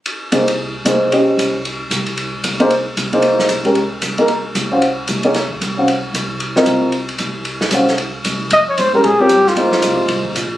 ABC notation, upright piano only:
X:1
M:4/4
L:1/8
Q:"Swing" 1/4=227
K:Cphr
V:1 name="Upright piano"
z2 [B,EAc] z3 [B,EAc]2 | [DGce]3 z4 z | z3 [B,EAc] z3 [B,EAc]- | [B,EAc]2 z [A,DGB] z3 [B,EAB] |
z3 [D_Gcf] z3 [B,EAd] | z3 [D_Gcf] z4 | z [CFBe]3 z4 | z2 [D_Gcf] z4 z |
z3 [A,DGB] z [CFBd] z2 | [B,EAc]4- [B,EAc] z3 |]